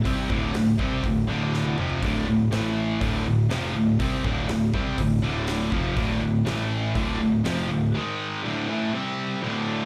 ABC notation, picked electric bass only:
X:1
M:4/4
L:1/8
Q:1/4=122
K:Dm
V:1 name="Picked electric bass" clef=bass
C,, D,,, D,,, C,, D,,, D,,,2 F,,, | D,,, D,,, A,,,2 D,,, D,,, F,,, D,,, | C,, D,,, D,,, C,, D,,, D,,,2 F,,, | D,,, D,,, A,,,2 D,,, D,,, F,,, D,,, |
z8 |]